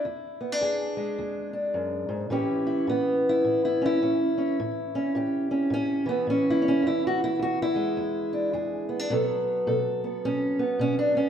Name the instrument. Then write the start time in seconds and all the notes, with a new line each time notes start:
steel-string acoustic guitar
Already playing: E4
0.05 E2
0.41 B3
0.52 D4
0.61 E2 G#4
0.97 G#3
1.18 E2
1.53 D4
1.74 F#2
2.09 G#2
2.30 A2 E3 C#4 E4 G4
2.67 E4
2.87 A2 B3
3.29 E4
3.44 A2
3.65 E4
3.82 C#4
3.86 E4
4.02 A2 C#4
4.38 C#4
4.60 A2
4.95 C#4
5.15 A2 G4
5.51 C#4
5.70 A2 C#4
6.06 E3 B3
6.27 A2 C#4
6.50 E4
6.62 C#4
6.68 C#4
6.82 E2
6.87 E4
7.07 F#4
7.24 E4
7.39 E2 F#4
7.62 E4
7.76 G#3
7.97 E2
8.33 D4
8.53 E2 G#4
8.89 B3
8.99 D4
9.10 B2 F#3 B3 A4
9.67 B2 A4
10.04 B3
10.25 B2 C#4
10.59 B3
10.79 B2 C#4
10.99 D4
11.15 B3 C#4